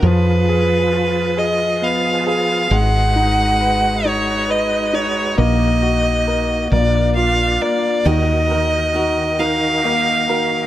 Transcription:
<<
  \new Staff \with { instrumentName = "Violin" } { \time 6/8 \key ees \minor \tempo 4. = 45 ces''4. ees''8 f''8 f''8 | ges''4. des''8 ees''8 des''8 | ees''4. d''8 f''8 d''8 | ees''4. f''4. | }
  \new Staff \with { instrumentName = "Steel-string acoustic guitar" } { \time 6/8 \key ees \minor r2. | r2. | r2. | <ees ees' ges' bes'>8 <ees' ges' bes'>8 <ees ees' ges' bes'>8 <ees ees' ges' bes'>8 <ees ees' ges' bes'>8 <ees' ges' bes'>8 | }
  \new Staff \with { instrumentName = "Grand piano" } { \time 6/8 \key ees \minor f8 aes'8 f'8 aes'8 ces'8 aes'8 | aes8 ees'8 ces''8 ees'8 ces''8 ees'8 | bes8 ges'8 bes'8 bes8 f'8 bes8 | ees8 bes'8 ges'8 bes'8 bes8 bes'8 | }
  \new Staff \with { instrumentName = "Tonewheel organ" } { \time 6/8 \key ees \minor << { ces''2.~ | ces''2. | r4. f'4. | bes'2. | } \\ { aes'2. | ges'2.~ | ges'4. d'4. | ges'2. | } >> }
  \new Staff \with { instrumentName = "Tonewheel organ" } { \time 6/8 \key ees \minor <f f'>2. | <aes ees'>2. | bes2. | <ees ees'>2. | }
  \new Staff \with { instrumentName = "Fretless electric bass" } { \clef bass \time 6/8 \key ees \minor f,2. | aes,,2. | bes,,4. bes,,4 r8 | ees,2. | }
>>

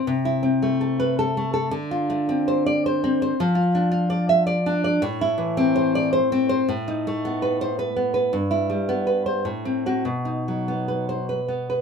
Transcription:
\new Staff \with { instrumentName = "Nylon-string guitar" } { \time 3/4 \key d \dorian \tempo 4 = 108 << { r4 \tuplet 3/2 { r4 b'8 } r4 | r4 \tuplet 3/2 { r4 d''8 } r4 | r4 \tuplet 3/2 { r4 e''8 } r4 | \key b \phrygian r4 \tuplet 3/2 { r4 d''8 } r4 |
r4 \tuplet 3/2 { r4 c''8 } r4 | r4 \tuplet 3/2 { r4 c''8 r4 fis'8 } | r4 \tuplet 3/2 { r4 c''8 } r4 | } \\ { \tuplet 3/2 { c8 e'8 c'8 a8 a'4 a'8 a8 a'8 } | \tuplet 3/2 { d8 f'8 a8 c'8 c''4 c''8 c'8 c''8 } | \tuplet 3/2 { f8 f'8 d'8 f'8 d''4 d''8 d'8 d''8 } | \tuplet 3/2 { a,8 e'8 e8 c'8 c''4 c''8 c'8 c''8 } |
\tuplet 3/2 { a,8 dis'8 a8 b8 b'4 b'8 b8 b'8 } | \tuplet 3/2 { g,8 e'8 g8 b8 b'4 a,8 c'8 c'8 } | \tuplet 3/2 { b,8 dis'8 fis8 b8 b'4 b'8 b8 b'8 } | } >> }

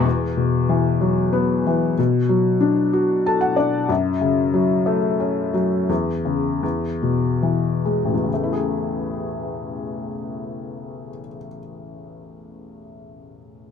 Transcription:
<<
  \new Staff \with { instrumentName = "Felt piano" } { \time 3/4 \key a \major \tempo 4 = 85 r2. | r2 a''16 fis''16 d''8 | r2. | r2. |
r2. | r2. | }
  \new Staff \with { instrumentName = "Felt piano" } { \clef bass \time 3/4 \key a \major e,8 b,8 e8 fis8 b8 e8 | b,8 fis8 d'8 fis'8 a'8 d'8 | fis,8 cis8 fis8 a8 cis'8 fis8 | e,8 cis8 e,8 b,8 e8 gis8 |
<a,, e, cis a e' gis'>2.~ | <a,, e, cis a e' gis'>2. | }
>>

